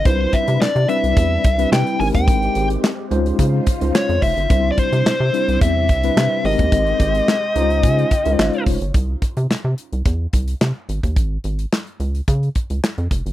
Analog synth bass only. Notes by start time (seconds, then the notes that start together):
0.05 C2
0.48 C3
0.61 C3
0.76 C3
1.03 C2
1.17 E2
1.45 C2
1.72 C3
2.00 G#1
2.15 D#2
2.28 G#1
2.56 G#1
3.11 C#2
3.39 C#3
3.82 C#2
4.09 F2
4.22 F1
4.37 G1
4.50 C2
4.92 C3
5.06 C3
5.20 C3
5.48 C2
5.61 E2
5.89 C2
6.17 C3
6.44 G#1
6.59 D#2
6.72 G#1
7.00 G#1
7.56 C#2
7.83 C#3
8.26 C#2
8.39 G#1
8.67 F1
8.81 G1
8.94 C2
9.37 C3
9.50 C3
9.65 C3
9.93 C2
10.06 E2
10.33 C2
10.61 C3
10.89 G#1
11.03 D#2
11.16 G#1
11.44 G#1
12.00 C#2
12.28 C#3
12.70 C#2
12.98 F2
13.11 F1
13.26 G1